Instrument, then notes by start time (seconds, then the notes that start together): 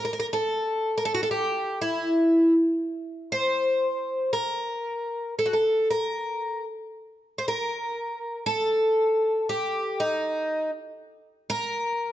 twelve-string acoustic guitar
0.05 A#4
0.13 A#4
0.20 A#4
0.33 A4
0.98 A#4
1.05 A4
1.14 F#4
1.23 A4
1.31 G4
1.81 E4
3.32 C5
4.33 A#4
5.39 A4
5.46 F#4
5.53 A4
5.90 A#4
7.38 C5
7.48 A#4
8.46 A4
9.49 G4
10.00 D#4
11.50 A#4